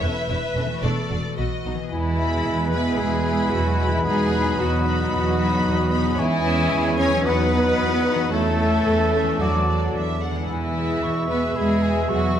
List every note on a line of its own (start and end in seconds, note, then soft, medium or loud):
0.00 0.11 E1 soft
0.00 0.10 E2 soft
0.00 0.64 E3 medium
0.00 0.68 A3 soft
0.00 0.11 C#4 soft
0.00 0.81 E4 soft
0.00 0.11 A4 soft
0.00 0.83 B4 medium
0.00 0.83 C#5 soft
0.00 0.82 E5 medium
0.29 0.37 E1 soft
0.29 0.38 E2 soft
0.29 0.38 E4 soft
0.29 0.38 C#5 soft
0.56 0.64 E1 soft
0.56 0.65 E2 soft
0.56 0.64 C#4 soft
0.56 0.64 A4 soft
0.65 1.31 E3 soft
0.69 1.33 A3 soft
0.74 1.27 F#4 soft
0.78 1.37 D5 soft
0.83 0.91 E1 medium
0.83 0.92 E2 medium
0.83 1.09 A3 medium
0.83 1.09 D4 medium
0.83 1.38 A4 medium
0.83 1.38 D5 medium
1.10 1.19 E1 soft
1.10 1.20 E2 soft
1.10 1.18 D4 soft
1.10 1.18 F#4 soft
1.19 1.85 B2 soft
1.24 1.78 B3 soft
1.28 1.90 F#4 soft
1.33 1.87 B4 soft
1.37 1.46 B1 soft
1.37 1.46 B2 soft
1.37 1.45 F#4 soft
1.37 1.65 F#4 soft
1.37 1.45 B4 soft
1.37 1.91 D#5 soft
1.65 1.73 B1 soft
1.65 1.74 B2 soft
1.65 1.73 D#4 soft
1.65 1.73 F#4 soft
1.74 3.87 E3 medium
1.79 3.91 B3 soft
1.83 4.04 G#4 soft
1.88 2.68 E4 medium
1.88 4.00 B4 soft
1.88 6.14 B4 medium
1.92 2.40 E2 soft
1.92 6.15 B2 medium
1.92 2.69 E3 medium
1.92 4.02 G#3 medium
1.92 6.15 B3 medium
1.92 2.69 E4 medium
1.92 4.02 E4 medium
1.92 2.95 G#5 medium
1.92 2.95 B5 soft
2.18 2.71 G#3 soft
2.18 2.71 E4 soft
2.18 2.70 B5 soft
2.46 2.93 E2 medium
2.70 3.23 G#3 soft
2.70 2.99 B3 medium
2.70 3.23 E4 soft
2.70 2.83 B4 medium
2.70 2.98 B4 medium
2.70 3.24 B5 soft
2.97 3.46 E2 medium
2.97 3.53 G#3 medium
2.97 3.51 G#4 medium
2.97 4.04 G#5 medium
2.97 4.04 B5 soft
3.24 3.78 G#3 soft
3.24 3.78 E4 soft
3.24 3.77 B5 soft
3.52 4.00 E2 medium
3.52 3.93 F#3 medium
3.52 3.93 F#4 medium
3.52 3.91 F#4 medium
3.78 4.05 G#3 soft
3.78 4.05 E4 soft
3.78 4.03 B5 soft
3.88 6.00 E3 medium
3.88 4.05 E4 medium
3.92 3.99 E3 medium
3.92 6.14 B3 soft
3.92 4.05 E4 medium
3.97 6.16 D#4 soft
4.01 6.18 F#3 medium
4.01 4.31 B3 soft
4.01 6.18 B4 soft
4.01 4.58 D#5 soft
4.01 4.29 B5 soft
4.05 4.53 E2 medium
4.05 4.59 G#3 medium
4.05 4.31 D#4 soft
4.05 6.14 D#4 medium
4.05 4.58 G#4 medium
4.05 4.58 B5 medium
4.30 4.85 B3 soft
4.30 4.85 D#4 soft
4.30 4.83 B5 soft
4.59 5.06 E2 medium
4.59 5.12 F#3 medium
4.59 5.12 F#4 medium
4.59 5.11 F#4 medium
4.59 5.11 D#5 medium
4.59 5.12 B5 soft
4.84 5.38 B3 medium
4.84 5.38 D#4 soft
4.84 5.37 B5 medium
5.12 5.60 E2 medium
5.12 5.91 F#3 medium
5.12 5.90 F#4 medium
5.12 5.91 F#4 medium
5.12 6.20 D#5 medium
5.12 6.20 B5 medium
5.38 5.91 B3 soft
5.38 5.91 D#4 soft
5.38 5.89 B5 medium
5.66 6.13 E2 medium
5.90 6.18 B3 medium
5.90 6.18 D#4 medium
5.90 6.17 B5 medium
6.01 7.07 E3 medium
6.06 7.21 G#3 soft
6.10 7.23 E4 soft
6.15 7.23 E3 medium
6.15 7.23 C#4 medium
6.15 6.94 E4 medium
6.15 7.23 E4 medium
6.15 7.25 C#5 medium
6.19 6.66 E2 medium
6.19 6.95 E3 medium
6.19 7.23 G#3 medium
6.19 6.95 E4 medium
6.19 7.23 G#4 medium
6.19 7.27 C#5 medium
6.19 7.25 G#5 medium
6.43 6.97 C#4 medium
6.43 6.97 E4 soft
6.43 6.96 G#5 medium
6.73 7.19 E2 medium
6.98 7.25 C#4 medium
6.98 7.26 C#4 medium
6.98 7.25 E4 medium
6.98 7.11 C#5 medium
6.98 7.26 C#5 medium
6.98 7.25 G#5 medium
7.08 8.14 E3 medium
7.13 8.28 F#3 soft
7.17 8.31 D#4 soft
7.22 7.72 E2 medium
7.22 8.32 B3 medium
7.22 8.32 F#4 medium
7.22 8.33 B4 soft
7.22 8.30 B4 medium
7.22 8.30 B4 loud
7.22 7.51 F#5 medium
7.22 8.30 F#5 medium
7.26 8.18 F#3 medium
7.26 8.33 B3 medium
7.26 8.18 D#4 medium
7.26 7.51 D#4 medium
7.26 7.51 F#4 medium
7.26 8.33 B4 medium
7.26 8.32 D#5 medium
7.52 8.05 D#4 medium
7.52 8.05 F#4 medium
7.52 8.04 F#5 medium
7.80 8.26 E2 medium
8.06 8.32 D#4 medium
8.06 8.32 F#4 medium
8.06 8.32 F#5 medium
8.15 9.22 E3 medium
8.20 9.26 A3 soft
8.24 9.38 E4 soft
8.29 8.80 E2 medium
8.29 9.38 C#4 medium
8.29 9.38 E4 medium
8.29 9.38 A4 medium
8.29 9.41 C#5 soft
8.29 9.10 C#5 medium
8.29 9.10 A5 medium
8.33 9.41 E3 medium
8.33 9.38 A3 medium
8.33 10.19 A3 medium
8.33 9.39 A4 medium
8.33 9.39 E5 medium
8.59 9.12 C#4 soft
8.59 9.12 A4 soft
8.59 9.12 E5 medium
8.87 9.34 E2 medium
9.14 9.40 C#4 soft
9.14 9.40 A4 soft
9.14 9.40 E5 soft
9.23 10.30 E3 soft
9.27 10.44 A3 soft
9.32 10.46 D4 soft
9.36 10.21 D4 medium
9.36 10.21 A4 medium
9.36 10.49 D5 soft
9.36 10.17 D5 medium
9.36 10.17 A5 soft
9.41 9.88 E2 medium
9.41 10.22 F#3 medium
9.41 9.95 F#3 medium
9.41 9.66 D4 soft
9.41 9.94 F#4 medium
9.41 9.95 F#4 medium
9.41 9.67 A4 soft
9.41 10.22 D5 medium
9.41 9.67 D5 soft
9.68 10.19 D4 soft
9.68 10.20 A4 soft
9.68 9.89 D5 soft
9.94 10.42 E2 medium
9.94 10.20 E5 medium
10.21 10.48 D4 soft
10.21 10.48 A4 soft
10.21 10.49 F#5 medium
10.31 12.40 E3 soft
10.36 12.40 G#3 soft
10.40 12.40 E4 soft
10.44 12.40 B4 soft
10.48 10.96 E2 soft
10.48 12.40 B2 medium
10.48 11.26 E3 medium
10.48 12.40 G#3 medium
10.48 12.40 B3 medium
10.48 11.25 E4 medium
10.48 12.40 B4 medium
10.48 12.40 E5 soft
10.48 12.40 E5 medium
10.48 11.04 G#5 soft
10.75 11.28 B3 soft
10.75 11.28 G#4 soft
10.75 11.28 E5 soft
11.02 11.49 E2 soft
11.02 11.57 C#6 soft
11.30 11.82 B3 soft
11.30 11.39 B3 medium
11.30 11.82 G#4 soft
11.30 11.55 B4 medium
11.30 11.56 B4 medium
11.30 11.81 E5 soft
11.55 12.03 E2 soft
11.55 12.09 G#3 medium
11.55 12.12 G#4 medium
11.55 12.09 G#4 medium
11.55 11.84 B5 soft
11.82 12.35 B3 soft
11.82 12.35 G#4 medium
11.82 12.35 E5 soft
11.82 12.10 G#5 soft
12.09 12.40 E2 medium
12.09 12.40 F#3 medium
12.09 12.40 F#4 medium
12.09 12.40 C#6 soft
12.36 12.40 B3 soft
12.36 12.40 G#4 medium
12.36 12.40 E5 soft